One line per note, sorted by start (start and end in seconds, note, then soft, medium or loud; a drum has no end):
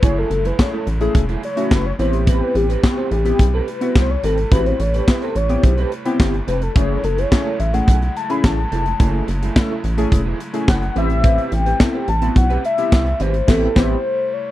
0.00 0.24 F#1 loud
0.00 1.95 C#3 medium
0.00 1.95 F#3 medium
0.00 1.95 G#3 medium
0.00 1.95 A3 medium
0.00 0.28 A3 medium
0.00 0.26 A3 medium
0.00 0.26 C#4 medium
0.00 14.51 E4 medium
0.00 0.29 E4 medium
0.00 0.26 E4 medium
0.00 0.29 G#4 medium
0.00 0.26 G#4 medium
0.00 kick loud
0.00 closed hi-hat medium
0.04 0.20 C#5 loud
0.18 0.48 A4 medium
0.30 0.52 F#1 medium
0.30 muted clean electric guitar stroke soft
0.30 closed hi-hat medium
0.44 0.56 A3 medium
0.44 0.55 E4 medium
0.44 0.55 G#4 medium
0.44 0.62 B4 medium
0.44 closed hi-hat medium
0.58 0.76 A3 medium
0.58 0.76 C#4 medium
0.58 0.76 E4 medium
0.58 0.76 G#4 medium
0.58 0.88 C#5 medium
0.58 muted clean electric guitar stroke soft
0.58 kick loud
0.58 snare loud
0.58 clap medium
0.73 0.85 A3 medium
0.73 0.86 E4 medium
0.73 0.86 A4 medium
0.86 1.08 A1 medium
0.86 muted clean electric guitar stroke soft
0.86 closed hi-hat medium
1.01 1.24 A3 medium
1.01 1.24 C#4 medium
1.01 1.24 E4 medium
1.01 1.24 G#4 loud
1.01 muted clean electric guitar stroke soft
1.01 closed hi-hat medium
1.15 1.36 E1 medium
1.15 muted clean electric guitar stroke soft
1.15 kick loud
1.15 closed hi-hat medium
1.29 1.41 A3 medium
1.29 1.42 E4 medium
1.29 1.42 G#4 loud
1.29 closed hi-hat soft
1.43 1.74 C#5 loud
1.43 muted clean electric guitar stroke soft
1.43 closed hi-hat medium
1.56 1.85 A3 medium
1.56 1.86 C#4 medium
1.56 1.86 E4 medium
1.56 1.86 F#4 medium
1.56 muted clean electric guitar stroke soft
1.56 closed hi-hat medium
1.71 1.92 F#1 medium
1.71 1.86 B4 loud
1.71 kick loud
1.71 snare loud
1.71 clap loud
1.85 1.92 C#5 loud
1.85 muted clean electric guitar stroke soft
1.99 2.41 A1 loud
1.99 6.72 C3 medium
1.99 6.72 G3 medium
1.99 6.72 A3 medium
1.99 2.66 B3 medium
1.99 2.13 C4 medium
1.99 2.66 C4 medium
1.99 2.67 E4 medium
1.99 2.67 G4 medium
1.99 2.13 G4 medium
1.99 6.72 B4 medium
1.99 2.12 B4 medium
1.99 2.30 C5 loud
1.99 closed hi-hat medium
2.13 muted clean electric guitar stroke medium
2.13 closed hi-hat soft
2.27 2.53 C4 medium
2.27 2.53 G4 medium
2.27 2.58 B4 loud
2.27 2.53 B4 medium
2.27 kick loud
2.27 closed hi-hat medium
2.55 2.76 A1 medium
2.55 3.12 G4 loud
2.55 muted clean electric guitar stroke soft
2.55 closed hi-hat medium
2.69 2.80 C4 medium
2.69 2.80 G4 medium
2.69 2.80 B4 medium
2.69 closed hi-hat medium
2.83 3.00 B3 medium
2.83 3.00 C4 medium
2.83 3.01 E4 medium
2.83 3.01 F#4 medium
2.83 muted clean electric guitar stroke soft
2.83 kick loud
2.83 snare loud
2.83 clap medium
2.97 3.10 C4 medium
2.97 3.11 G4 medium
2.97 3.11 C5 medium
3.11 3.32 A1 loud
3.11 3.56 G4 loud
3.11 muted clean electric guitar stroke soft
3.11 closed hi-hat medium
3.25 3.48 B3 medium
3.25 3.48 C4 medium
3.25 3.48 E4 medium
3.25 3.48 G4 medium
3.25 muted clean electric guitar stroke soft
3.25 closed hi-hat medium
3.39 3.60 B1 medium
3.39 muted clean electric guitar stroke soft
3.39 kick medium
3.39 closed hi-hat medium
3.54 3.67 C4 medium
3.54 3.67 G4 medium
3.54 3.70 A4 medium
3.54 3.67 B4 medium
3.68 3.96 B4 medium
3.68 muted clean electric guitar stroke soft
3.68 closed hi-hat medium
3.81 4.10 B3 medium
3.81 4.10 C4 medium
3.81 4.10 E4 medium
3.81 4.10 F#4 medium
3.81 muted clean electric guitar stroke soft
3.81 closed hi-hat medium
3.96 4.17 C2 medium
3.96 4.12 C5 loud
3.96 kick loud
3.96 snare loud
3.96 clap loud
4.10 4.24 C#5 medium
4.10 muted clean electric guitar stroke medium
4.24 4.45 G#1 loud
4.24 4.37 C4 medium
4.24 4.37 G4 medium
4.24 4.54 A4 medium
4.24 4.36 B4 medium
4.24 closed hi-hat medium
4.37 muted clean electric guitar stroke soft
4.37 closed hi-hat medium
4.51 4.73 A1 loud
4.51 4.74 B3 medium
4.51 4.77 C4 medium
4.51 4.75 C4 medium
4.51 4.75 E4 medium
4.51 4.75 F#4 medium
4.51 4.78 G4 medium
4.51 4.68 B4 loud
4.51 4.78 B4 medium
4.51 kick loud
4.51 closed hi-hat medium
4.66 4.82 C5 medium
4.66 closed hi-hat soft
4.79 5.01 A1 medium
4.79 5.10 C#5 loud
4.79 muted clean electric guitar stroke soft
4.79 closed hi-hat medium
4.94 5.05 C4 medium
4.94 5.04 G4 medium
4.94 5.04 B4 medium
4.94 closed hi-hat medium
5.07 5.25 B3 medium
5.07 5.25 C4 medium
5.07 5.25 E4 medium
5.07 5.25 G4 medium
5.07 5.22 B4 medium
5.07 kick loud
5.07 snare loud
5.07 clap loud
5.21 5.34 C4 medium
5.21 5.35 G4 medium
5.21 5.38 A4 medium
5.21 5.35 C5 medium
5.21 closed hi-hat soft
5.35 5.57 A1 loud
5.35 5.65 C#5 loud
5.35 muted clean electric guitar stroke soft
5.35 closed hi-hat medium
5.49 5.72 B3 medium
5.49 5.73 C4 medium
5.49 5.73 E4 medium
5.49 5.73 G4 loud
5.49 muted clean electric guitar stroke soft
5.49 closed hi-hat medium
5.63 5.85 B1 loud
5.63 5.92 C5 medium
5.63 muted clean electric guitar stroke soft
5.63 kick loud
5.63 closed hi-hat medium
5.77 5.90 C4 medium
5.77 5.91 G4 medium
5.77 5.91 B4 medium
5.77 closed hi-hat soft
5.91 muted clean electric guitar stroke soft
5.91 closed hi-hat medium
6.05 6.34 B3 medium
6.05 6.34 C4 medium
6.05 6.35 E4 medium
6.05 6.35 G4 loud
6.05 muted clean electric guitar stroke soft
6.05 closed hi-hat medium
6.20 6.41 G1 medium
6.20 kick loud
6.20 snare loud
6.20 clap loud
6.33 muted clean electric guitar stroke soft
6.33 closed hi-hat soft
6.47 6.69 F1 loud
6.47 6.61 C4 medium
6.47 6.61 G4 medium
6.47 6.60 B4 medium
6.47 6.64 B4 medium
6.47 closed hi-hat medium
6.61 6.76 A4 medium
6.61 muted clean electric guitar stroke medium
6.61 closed hi-hat soft
6.75 6.97 F#1 loud
6.75 10.93 C#3 medium
6.75 10.92 F#3 medium
6.75 10.93 G#3 medium
6.75 7.01 A3 medium
6.75 6.99 A3 medium
6.75 14.51 A3 medium
6.75 6.99 C#4 medium
6.75 7.01 E4 loud
6.75 6.99 E4 medium
6.75 7.02 G#4 medium
6.75 6.99 G#4 medium
6.75 7.06 C#5 loud
6.75 kick loud
6.75 closed hi-hat medium
7.04 7.25 F#1 medium
7.04 7.20 A4 medium
7.04 muted clean electric guitar stroke soft
7.04 closed hi-hat medium
7.17 7.29 A3 soft
7.17 7.29 E4 medium
7.17 7.28 G#4 medium
7.17 7.62 C#5 loud
7.17 closed hi-hat medium
7.31 7.49 A3 medium
7.31 7.49 C#4 medium
7.31 7.49 E4 medium
7.31 7.49 G#4 medium
7.31 muted clean electric guitar stroke soft
7.31 kick loud
7.31 snare loud
7.31 clap loud
7.45 7.58 A3 medium
7.45 7.59 E4 medium
7.45 7.59 A4 medium
7.60 7.81 A1 loud
7.60 7.75 E5 loud
7.60 muted clean electric guitar stroke soft
7.60 closed hi-hat medium
7.74 7.97 A3 medium
7.74 7.97 C#4 medium
7.74 7.97 E4 medium
7.74 7.97 G#4 medium
7.74 8.16 F#5 loud
7.74 muted clean electric guitar stroke soft
7.74 closed hi-hat medium
7.88 8.09 B1 medium
7.88 muted clean electric guitar stroke soft
7.88 kick loud
7.88 closed hi-hat medium
8.02 muted clean electric guitar stroke soft
8.02 closed hi-hat soft
8.17 8.32 A5 loud
8.17 closed hi-hat medium
8.29 8.58 A3 medium
8.29 8.59 C#4 medium
8.29 8.59 E4 medium
8.29 8.59 G#4 loud
8.29 8.46 B5 loud
8.29 muted clean electric guitar stroke soft
8.29 closed hi-hat medium
8.44 8.65 A1 loud
8.44 9.28 A5 loud
8.44 kick loud
8.44 snare loud
8.44 clap medium
8.58 muted clean electric guitar stroke soft
8.72 8.93 F1 medium
8.72 8.85 A3 medium
8.72 8.86 E4 medium
8.72 8.85 G#4 medium
8.72 closed hi-hat medium
8.86 muted clean electric guitar stroke medium
8.86 closed hi-hat soft
8.99 9.21 F#1 loud
8.99 9.23 A3 medium
8.99 9.26 A3 medium
8.99 9.23 C#4 medium
8.99 9.23 E4 medium
8.99 9.26 E4 medium
8.99 9.23 G#4 medium
8.99 9.26 G#4 medium
8.99 kick loud
8.99 closed hi-hat medium
9.28 9.49 F#1 loud
9.28 muted clean electric guitar stroke soft
9.28 closed hi-hat medium
9.42 9.53 A3 medium
9.42 9.53 E4 medium
9.42 9.53 G#4 medium
9.42 closed hi-hat medium
9.56 9.73 A3 medium
9.56 9.73 C#4 medium
9.56 9.73 E4 medium
9.56 9.73 A4 loud
9.56 muted clean electric guitar stroke soft
9.56 kick loud
9.56 snare loud
9.56 clap medium
9.70 9.83 A3 medium
9.70 9.83 E4 medium
9.70 9.84 A4 medium
9.84 10.05 A1 loud
9.84 muted clean electric guitar stroke soft
9.84 closed hi-hat medium
9.97 10.21 A3 loud
9.97 10.21 C#4 medium
9.97 10.21 E4 medium
9.97 10.21 G#4 loud
9.97 muted clean electric guitar stroke soft
9.97 closed hi-hat medium
10.12 10.33 E1 medium
10.12 muted clean electric guitar stroke soft
10.12 kick loud
10.12 closed hi-hat medium
10.26 10.39 A3 medium
10.26 10.39 E4 medium
10.26 10.39 G#4 medium
10.40 muted clean electric guitar stroke soft
10.40 closed hi-hat medium
10.53 10.82 A3 medium
10.53 10.83 C#4 medium
10.53 10.83 E4 medium
10.53 10.83 G#4 medium
10.53 muted clean electric guitar stroke soft
10.53 closed hi-hat medium
10.68 10.89 F#1 medium
10.68 10.95 F#5 loud
10.68 kick loud
10.68 snare loud
10.68 clap loud
10.82 muted clean electric guitar stroke medium
10.82 closed hi-hat soft
10.95 11.38 A1 loud
10.95 14.51 C3 medium
10.95 14.51 G3 medium
10.95 11.63 B3 medium
10.95 11.09 C4 medium
10.95 11.64 C4 medium
10.95 11.64 E4 medium
10.95 11.09 G4 medium
10.95 11.64 G4 medium
10.95 11.08 B4 loud
10.95 11.55 E5 loud
10.95 closed hi-hat medium
11.09 muted clean electric guitar stroke soft
11.09 closed hi-hat soft
11.23 11.50 C4 medium
11.23 11.50 G4 loud
11.23 11.50 B4 loud
11.23 kick loud
11.23 closed hi-hat medium
11.38 closed hi-hat soft
11.52 11.73 A1 loud
11.52 12.08 G5 loud
11.52 muted clean electric guitar stroke soft
11.52 closed hi-hat medium
11.65 11.77 C4 medium
11.65 11.77 G4 medium
11.65 11.77 B4 medium
11.65 closed hi-hat medium
11.80 11.97 B3 medium
11.80 11.97 C4 medium
11.80 11.98 E4 medium
11.80 11.98 A4 medium
11.80 kick loud
11.80 snare loud
11.80 clap medium
11.94 12.07 C4 medium
11.94 12.07 G4 medium
11.94 12.08 C5 medium
12.08 12.29 A1 loud
12.08 12.35 A5 loud
12.08 muted clean electric guitar stroke soft
12.08 closed hi-hat medium
12.22 12.45 B3 medium
12.22 12.45 C4 medium
12.22 12.45 E4 medium
12.22 12.46 F#4 medium
12.22 muted clean electric guitar stroke soft
12.22 closed hi-hat medium
12.36 12.57 B1 medium
12.36 12.63 F#5 loud
12.36 muted clean electric guitar stroke soft
12.36 kick loud
12.36 closed hi-hat medium
12.50 12.63 C4 medium
12.50 12.63 G4 medium
12.50 12.64 B4 medium
12.50 closed hi-hat soft
12.64 13.23 E5 loud
12.64 muted clean electric guitar stroke soft
12.64 closed hi-hat medium
12.78 13.07 B3 medium
12.78 13.07 C4 medium
12.78 13.07 E4 medium
12.78 13.07 G4 loud
12.78 muted clean electric guitar stroke soft
12.78 closed hi-hat medium
12.92 13.13 C2 medium
12.92 kick loud
12.92 snare loud
12.92 clap loud
13.06 muted clean electric guitar stroke soft
13.06 closed hi-hat soft
13.20 13.41 G#1 loud
13.20 13.34 C4 medium
13.20 13.34 G4 medium
13.20 13.33 B4 loud
13.20 13.51 C5 loud
13.20 closed hi-hat medium
13.34 muted clean electric guitar stroke medium
13.34 closed hi-hat soft
13.48 13.67 A1 loud
13.48 13.67 B3 medium
13.48 13.67 C4 medium
13.48 13.67 E4 loud
13.48 13.68 G4 medium
13.48 13.68 G4 loud
13.48 13.77 A4 loud
13.48 13.68 B4 loud
13.48 kick loud
13.48 snare loud
13.48 crash medium
13.75 13.96 A1 medium
13.75 13.95 B3 loud
13.75 13.95 C4 loud
13.75 13.96 C4 loud
13.75 13.96 E4 loud
13.75 13.96 G4 loud
13.75 13.96 B4 loud
13.75 14.35 C5 loud
13.75 kick loud
13.75 snare loud
14.33 14.51 C#5 loud